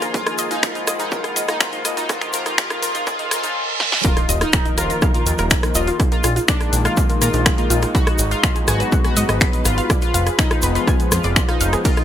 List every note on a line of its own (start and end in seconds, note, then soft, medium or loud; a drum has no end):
0.00 0.12 A#2 medium
0.00 0.12 D#3 medium
0.00 0.12 F3 medium
0.00 0.12 A#3 medium
0.00 0.12 D#4 medium
0.00 0.12 F4 medium
0.00 0.14 F4 medium
0.00 3.52 G#4 medium
0.00 0.14 A#4 medium
0.00 0.05 A#4 medium
0.00 3.56 D#5 medium
0.00 0.92 G#5 medium
0.00 cross-stick medium
0.00 closed hi-hat soft
0.00 riser medium
0.00 shaker soft
0.14 2.07 G#2 medium
0.14 0.61 D#3 medium
0.14 0.61 F3 medium
0.14 2.09 G#3 medium
0.14 0.61 A#3 medium
0.14 0.40 F4 loud
0.14 0.22 A#4 medium
0.14 kick loud
0.14 closed hi-hat medium
0.14 shaker soft
0.27 0.32 D#4 medium
0.27 cross-stick medium
0.27 closed hi-hat soft
0.27 shaker soft
0.38 0.47 D#5 loud
0.38 2.09 B5 medium
0.38 closed hi-hat loud
0.38 shaker medium
0.51 0.61 D#4 loud
0.51 0.56 F4 medium
0.51 closed hi-hat soft
0.51 shaker soft
0.61 1.10 D#3 medium
0.61 1.10 F3 medium
0.61 1.10 A#3 medium
0.61 0.89 F4 loud
0.61 0.71 A#4 medium
0.61 2.09 F#5 medium
0.61 finger snap loud
0.61 kick loud
0.61 cross-stick medium
0.61 closed hi-hat medium
0.61 shaker medium
0.75 0.81 D#4 medium
0.75 closed hi-hat soft
0.75 shaker soft
0.87 0.95 D#5 loud
0.87 cross-stick medium
0.87 closed hi-hat loud
0.87 shaker medium
0.99 1.10 D#4 medium
0.99 1.05 F4 medium
0.99 closed hi-hat soft
0.99 shaker soft
1.12 1.59 D#3 medium
1.12 1.59 F3 medium
1.12 1.59 A#3 medium
1.12 1.37 F4 loud
1.12 1.20 A#4 medium
1.12 kick loud
1.12 shaker soft
1.24 1.29 D#4 medium
1.24 cross-stick medium
1.24 closed hi-hat soft
1.24 shaker soft
1.36 1.44 D#5 loud
1.36 closed hi-hat loud
1.36 shaker loud
1.48 1.59 D#4 medium
1.48 1.54 F4 medium
1.48 cross-stick medium
1.48 closed hi-hat soft
1.48 shaker soft
1.60 2.07 D#3 medium
1.60 2.07 F3 medium
1.60 2.07 A#3 medium
1.60 1.86 F4 loud
1.60 1.69 A#4 medium
1.60 finger snap loud
1.60 kick loud
1.60 closed hi-hat medium
1.60 shaker medium
1.72 1.78 D#4 medium
1.72 closed hi-hat soft
1.72 shaker soft
1.85 1.93 D#5 loud
1.85 cross-stick medium
1.85 closed hi-hat loud
1.85 shaker medium
1.97 2.07 D#4 medium
1.97 2.02 F4 medium
1.97 closed hi-hat soft
1.97 shaker soft
2.09 3.54 F2 medium
2.09 2.32 D#3 medium
2.09 2.32 F3 medium
2.09 3.54 F3 medium
2.09 2.32 A#3 medium
2.09 2.32 F4 loud
2.09 3.56 F4 medium
2.09 2.17 A#4 medium
2.09 kick loud
2.09 cross-stick medium
2.09 closed hi-hat medium
2.09 shaker soft
2.21 2.27 D#4 medium
2.21 finger snap soft
2.21 closed hi-hat soft
2.21 shaker soft
2.33 2.56 D#3 medium
2.33 2.56 F3 medium
2.33 2.56 A#3 medium
2.33 2.56 F4 loud
2.33 2.42 A#4 medium
2.33 3.56 A#4 medium
2.33 closed hi-hat loud
2.33 shaker medium
2.46 2.51 D#4 medium
2.46 cross-stick medium
2.46 closed hi-hat soft
2.46 shaker soft
2.58 2.81 D#3 medium
2.58 2.81 F3 medium
2.58 2.81 A#3 medium
2.58 2.81 F4 loud
2.58 2.66 A#4 medium
2.58 finger snap loud
2.58 kick loud
2.58 closed hi-hat medium
2.58 shaker medium
2.70 2.76 D#4 medium
2.70 cross-stick medium
2.70 closed hi-hat soft
2.70 shaker soft
2.82 3.05 D#3 medium
2.82 3.05 F3 medium
2.82 3.05 A#3 medium
2.82 3.05 F4 loud
2.82 2.91 A#4 medium
2.82 closed hi-hat loud
2.82 shaker medium
2.95 3.00 D#4 medium
2.95 3.56 G#5 medium
2.95 closed hi-hat soft
2.95 shaker soft
3.07 3.29 D#3 medium
3.07 3.29 F3 medium
3.07 3.29 A#3 medium
3.07 3.29 F4 loud
3.07 3.15 A#4 medium
3.07 kick loud
3.07 cross-stick medium
3.07 closed hi-hat soft
3.07 reverse cymbal medium
3.07 shaker medium
3.19 3.24 D#4 medium
3.19 closed hi-hat soft
3.19 shaker soft
3.31 3.54 D#3 medium
3.31 3.54 F3 medium
3.31 3.54 A#3 medium
3.31 3.54 F4 loud
3.31 3.39 A#4 medium
3.31 cross-stick medium
3.31 closed hi-hat loud
3.31 shaker medium
3.44 3.49 D#4 medium
3.44 closed hi-hat soft
3.44 shaker soft
3.80 snare medium
3.92 snare loud
4.04 5.98 D#3 medium
4.04 5.98 D#4 medium
4.04 5.98 F4 medium
4.04 4.30 F4 loud
4.04 5.98 A#4 loud
4.04 4.13 A#4 medium
4.04 4.13 A#5 medium
4.04 kick loud
4.04 closed hi-hat medium
4.04 impact medium
4.04 shaker medium
4.17 4.22 D#4 medium
4.17 4.22 D#5 medium
4.17 cross-stick medium
4.17 closed hi-hat soft
4.17 shaker soft
4.29 4.44 D#1 loud
4.29 4.37 D#5 loud
4.29 4.37 D#6 medium
4.29 closed hi-hat loud
4.29 shaker loud
4.41 4.67 D#4 loud
4.41 4.46 F4 medium
4.41 4.46 F5 medium
4.41 cross-stick medium
4.41 closed hi-hat soft
4.41 shaker soft
4.53 finger snap loud
4.53 kick loud
4.53 closed hi-hat medium
4.53 shaker medium
4.66 5.98 D#3 medium
4.66 5.98 F3 medium
4.66 5.98 A#3 medium
4.66 4.71 D#4 medium
4.66 4.71 D#5 medium
4.66 closed hi-hat soft
4.66 shaker soft
4.78 4.93 D#1 medium
4.78 5.03 F4 loud
4.78 4.81 A#4 loud
4.78 4.81 A#5 medium
4.78 cross-stick medium
4.78 closed hi-hat loud
4.78 shaker medium
4.90 4.93 A#4 medium
4.90 4.93 A#5 medium
4.90 closed hi-hat soft
4.90 shaker soft
5.02 5.07 F5 loud
5.02 5.07 F6 medium
5.02 kick loud
5.02 cross-stick medium
5.02 shaker medium
5.14 5.31 F4 medium
5.14 closed hi-hat soft
5.14 shaker soft
5.26 5.34 D#2 loud
5.26 closed hi-hat loud
5.26 shaker loud
5.38 5.54 D#1 loud
5.38 5.44 A#4 loud
5.38 5.44 A#5 medium
5.38 cross-stick medium
5.38 closed hi-hat soft
5.38 shaker soft
5.50 5.59 A#4 medium
5.50 finger snap loud
5.50 kick loud
5.50 closed hi-hat medium
5.50 shaker medium
5.63 5.68 D#4 medium
5.63 5.68 D#5 medium
5.63 cross-stick medium
5.63 closed hi-hat soft
5.63 shaker soft
5.75 5.90 D#1 loud
5.75 6.01 F4 medium
5.75 5.83 D#5 loud
5.75 5.83 D#6 medium
5.75 closed hi-hat loud
5.75 shaker loud
5.87 5.93 F4 medium
5.87 5.93 F5 medium
5.87 closed hi-hat soft
5.87 shaker soft
6.00 9.86 G#3 medium
6.00 7.93 A#3 medium
6.00 9.86 D#4 medium
6.00 kick loud
6.00 cross-stick medium
6.00 closed hi-hat medium
6.00 shaker medium
6.12 6.17 A#3 medium
6.12 6.37 F4 loud
6.12 6.17 A#4 medium
6.12 closed hi-hat soft
6.12 shaker soft
6.24 6.39 A#1 loud
6.24 6.27 F4 loud
6.24 6.27 F5 medium
6.24 cross-stick medium
6.24 closed hi-hat loud
6.24 shaker medium
6.36 6.40 F4 medium
6.36 6.40 F5 medium
6.36 closed hi-hat soft
6.36 shaker soft
6.48 6.74 D4 loud
6.48 6.54 D5 loud
6.48 6.54 D6 medium
6.48 finger snap loud
6.48 kick loud
6.48 closed hi-hat medium
6.48 shaker medium
6.60 7.31 D#3 medium
6.60 7.31 G#3 medium
6.60 7.31 A#3 loud
6.60 cross-stick soft
6.60 closed hi-hat soft
6.60 shaker soft
6.73 6.88 A#1 loud
6.73 closed hi-hat loud
6.73 shaker medium
6.85 7.10 F4 medium
6.85 6.90 F4 loud
6.85 6.90 F5 medium
6.85 cross-stick medium
6.85 closed hi-hat soft
6.85 shaker soft
6.97 7.05 F4 medium
6.97 7.05 F5 medium
6.97 kick loud
6.97 shaker medium
7.09 7.15 A#3 medium
7.09 7.15 A#4 medium
7.09 closed hi-hat soft
7.09 shaker soft
7.21 7.29 A#2 loud
7.21 7.47 F4 loud
7.21 7.30 A#4 loud
7.21 7.30 A#5 medium
7.21 cross-stick medium
7.21 closed hi-hat loud
7.21 shaker loud
7.33 7.49 A#1 loud
7.33 7.93 D#3 loud
7.33 7.93 G#3 medium
7.33 7.93 A#3 loud
7.33 7.39 D4 medium
7.33 7.39 D5 medium
7.33 closed hi-hat soft
7.33 shaker soft
7.46 finger snap loud
7.46 kick loud
7.46 cross-stick medium
7.46 closed hi-hat medium
7.46 shaker medium
7.58 7.64 A#3 medium
7.58 7.84 F4 loud
7.58 7.64 A#4 medium
7.58 closed hi-hat soft
7.58 shaker soft
7.70 7.86 A#1 loud
7.70 7.74 F4 loud
7.70 7.74 F5 medium
7.70 closed hi-hat loud
7.70 shaker medium
7.82 7.86 F4 medium
7.82 7.86 F5 medium
7.82 cross-stick medium
7.82 closed hi-hat soft
7.82 shaker soft
7.95 8.20 F#4 loud
7.95 9.88 F#4 medium
7.95 11.81 B4 medium
7.95 8.00 B5 loud
7.95 kick loud
7.95 closed hi-hat medium
7.95 shaker medium
8.07 cross-stick medium
8.07 closed hi-hat soft
8.07 shaker soft
8.18 8.34 G#1 loud
8.18 closed hi-hat loud
8.18 shaker loud
8.31 8.57 F4 loud
8.31 8.37 F5 loud
8.31 8.37 F6 medium
8.31 closed hi-hat soft
8.31 shaker soft
8.43 8.52 F5 medium
8.43 finger snap loud
8.43 kick loud
8.43 cross-stick medium
8.43 closed hi-hat medium
8.43 shaker medium
8.56 9.88 F#3 medium
8.56 9.88 G#3 medium
8.56 9.88 B3 medium
8.56 8.61 G#4 medium
8.56 8.61 G#5 medium
8.56 closed hi-hat soft
8.56 shaker soft
8.68 8.83 G#1 medium
8.68 8.93 F#4 loud
8.68 8.76 G#5 loud
8.68 8.76 G#6 medium
8.68 cross-stick medium
8.68 closed hi-hat loud
8.68 shaker loud
8.80 8.85 B4 medium
8.80 8.85 B5 medium
8.80 closed hi-hat soft
8.80 shaker soft
8.92 kick loud
8.92 shaker medium
9.04 9.21 F#4 medium
9.04 9.10 G#4 medium
9.04 9.10 G#5 medium
9.04 cross-stick medium
9.04 closed hi-hat soft
9.04 shaker soft
9.17 9.24 G#2 loud
9.17 9.20 D#5 loud
9.17 9.20 D#6 medium
9.17 closed hi-hat loud
9.17 shaker loud
9.29 9.44 G#1 loud
9.29 9.32 D#5 medium
9.29 9.32 D#6 medium
9.29 cross-stick medium
9.29 closed hi-hat soft
9.29 shaker soft
9.41 9.46 B5 loud
9.41 finger snap loud
9.41 kick loud
9.41 closed hi-hat medium
9.41 shaker medium
9.53 closed hi-hat soft
9.53 shaker soft
9.65 9.81 G#1 loud
9.65 9.91 F4 medium
9.65 cross-stick medium
9.65 closed hi-hat loud
9.65 shaker loud
9.78 9.83 F5 loud
9.78 9.83 F6 medium
9.78 closed hi-hat soft
9.78 shaker soft
9.90 11.83 F3 medium
9.90 12.04 F4 medium
9.90 11.83 G#4 medium
9.90 9.98 D5 medium
9.90 9.98 D6 medium
9.90 kick loud
9.90 cross-stick medium
9.90 closed hi-hat medium
9.90 shaker medium
10.02 10.27 F4 loud
10.02 10.07 F4 medium
10.02 10.07 F5 medium
10.02 closed hi-hat soft
10.02 shaker soft
10.14 10.29 F1 loud
10.14 10.22 F5 loud
10.14 10.22 F6 medium
10.14 closed hi-hat loud
10.14 shaker loud
10.27 10.32 G#4 medium
10.27 10.32 G#5 medium
10.27 cross-stick medium
10.27 closed hi-hat soft
10.27 shaker soft
10.38 10.64 D#4 loud
10.38 finger snap loud
10.38 kick loud
10.38 closed hi-hat medium
10.38 shaker medium
10.51 11.21 F3 medium
10.51 11.21 G#3 medium
10.51 11.21 B3 loud
10.51 10.56 F4 medium
10.51 10.56 F5 medium
10.51 cross-stick medium
10.51 closed hi-hat soft
10.51 shaker soft
10.62 10.78 F1 loud
10.62 10.66 B4 loud
10.62 10.66 B5 medium
10.62 closed hi-hat loud
10.62 shaker medium
10.75 11.01 F4 medium
10.75 10.79 B4 medium
10.75 10.79 B5 medium
10.75 closed hi-hat soft
10.75 shaker soft
10.87 10.93 G#5 loud
10.87 10.93 G#6 medium
10.87 kick loud
10.87 cross-stick medium
10.87 closed hi-hat soft
10.87 shaker medium
11.00 closed hi-hat soft
11.00 shaker soft
11.12 11.19 F2 loud
11.12 11.37 F4 loud
11.12 cross-stick medium
11.12 closed hi-hat loud
11.12 shaker loud
11.23 11.39 F1 loud
11.23 11.29 D5 loud
11.23 11.29 D6 medium
11.23 closed hi-hat soft
11.23 shaker soft
11.36 11.44 D5 medium
11.36 11.44 D6 medium
11.36 finger snap loud
11.36 kick loud
11.36 closed hi-hat medium
11.36 shaker medium
11.48 11.74 D#4 loud
11.48 11.54 F4 medium
11.48 11.54 F5 medium
11.48 cross-stick medium
11.48 closed hi-hat soft
11.48 shaker soft
11.61 11.76 F1 medium
11.61 11.83 F3 medium
11.61 11.83 G#3 medium
11.61 11.83 B3 loud
11.61 11.69 F5 loud
11.61 11.69 F6 medium
11.61 closed hi-hat loud
11.61 shaker loud
11.73 11.78 G#4 medium
11.73 11.78 G#5 medium
11.73 cross-stick medium
11.73 closed hi-hat soft
11.73 shaker soft
11.85 12.04 D#3 medium
11.85 12.04 D#4 medium
11.85 12.04 F4 loud
11.85 12.04 A#4 medium
11.85 11.93 A#4 medium
11.85 11.93 A#5 medium
11.85 kick loud
11.85 closed hi-hat medium
11.85 ride medium
11.85 shaker medium
11.97 12.03 D#4 medium
11.97 12.03 D#5 medium
11.97 cross-stick medium
11.97 closed hi-hat soft
11.97 shaker soft